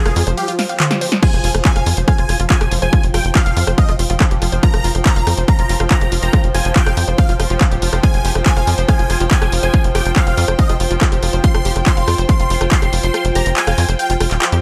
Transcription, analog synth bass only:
0.06 0.13 F1 medium
0.16 0.24 F2 loud
0.27 0.34 F1 loud
1.33 1.41 F1 medium
1.44 1.51 F1 loud
1.55 1.62 F1 medium
1.76 1.83 F1 medium
1.86 1.94 F2 loud
1.97 2.05 F1 medium
2.18 2.26 F1 medium
2.29 2.37 F1 loud
2.40 2.47 F1 loud
2.61 2.68 F1 medium
2.72 2.79 F1 loud
2.82 2.90 F1 medium
3.03 3.11 F1 medium
3.14 3.22 F1 loud
3.25 3.32 F1 medium
3.46 3.54 F1 medium
3.57 3.64 F2 loud
3.67 3.75 F1 medium
3.89 3.96 F1 medium
3.99 4.07 F1 loud
4.10 4.17 F1 medium
4.31 4.39 F1 medium
4.42 4.49 F1 loud
4.52 4.60 F1 loud
4.74 4.81 F1 medium
4.84 4.92 F1 loud
4.95 5.02 F1 medium
5.16 5.24 F1 medium
5.27 5.34 F2 loud
5.37 5.45 F1 medium
5.59 5.66 F1 medium
5.69 5.77 F1 loud
5.80 5.88 F1 loud
6.01 6.09 F1 medium
6.12 6.19 F1 loud
6.23 6.30 F1 medium
6.44 6.51 F1 medium
6.54 6.62 F1 loud
6.65 6.73 F1 medium
6.86 6.94 F1 medium
6.97 7.05 F2 loud
7.08 7.15 F1 loud
7.29 7.36 F1 medium
7.40 7.47 F1 loud
7.50 7.58 F1 medium
7.71 7.79 D#1 medium
7.82 7.90 F1 loud
7.93 8.00 F1 loud
8.14 8.22 F1 medium
8.25 8.32 F1 loud
8.35 8.43 F1 medium
8.57 8.64 F1 medium
8.67 8.75 F2 loud
8.78 8.85 F1 loud
8.99 9.07 F1 medium
9.10 9.17 F1 loud
9.20 9.28 F1 medium
9.42 9.49 F1 medium
9.52 9.60 F1 loud
9.63 9.71 F1 medium
9.84 9.92 F1 medium
9.95 10.02 F1 loud
10.06 10.13 F1 medium
10.27 10.34 F1 medium
10.38 10.45 F2 loud
10.48 10.56 F1 medium
10.69 10.77 F1 medium
10.80 10.88 F1 loud
10.91 10.98 F1 medium
11.12 11.20 F1 medium
11.23 11.30 F1 loud
11.33 11.41 F1 medium
11.55 11.62 F1 medium
11.65 11.73 F1 loud
11.76 11.83 F1 medium
11.97 12.05 F1 medium
12.08 12.15 F2 loud
12.18 12.26 F1 medium
12.40 12.47 F1 medium
12.50 12.58 F1 loud
12.61 12.68 F1 loud
12.82 12.90 F1 medium
12.93 13.00 F1 loud
13.03 13.11 F1 medium
13.25 13.32 F1 medium
13.35 13.43 F1 loud
13.46 13.54 F1 medium
13.67 13.75 F1 medium
13.78 13.85 F2 loud
13.89 13.96 F1 medium
14.10 14.17 F1 medium
14.21 14.28 F1 loud
14.31 14.39 D#1 medium
14.52 14.60 F2 medium

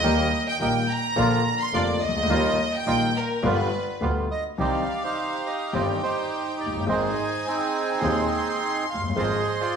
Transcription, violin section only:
0.00 0.43 D#5 loud
0.48 0.61 G5 loud
0.62 0.87 G5 loud
0.89 1.59 A#5 loud
1.60 1.73 C6 loud
1.74 2.02 D5 loud
2.02 2.72 D#5 loud
2.74 3.16 G5 loud
3.17 3.45 A#4 loud
3.46 4.02 B4 medium
4.58 5.70 F5 medium
5.73 6.88 G5 medium
6.88 8.03 G#5 loud
8.01 9.14 C6 medium
9.15 9.76 C6 loud

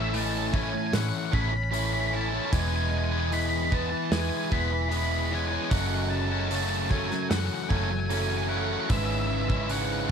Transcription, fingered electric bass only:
0.00 0.74 A1 medium
0.93 1.11 A2 loud
1.33 2.38 A1 medium
2.53 3.93 E1 loud
4.12 4.29 E2 loud
4.52 5.57 E1 medium
5.71 7.11 F#1 loud
7.30 7.48 F#2 medium
7.70 8.76 F#1 medium
8.90 10.11 G#1 loud

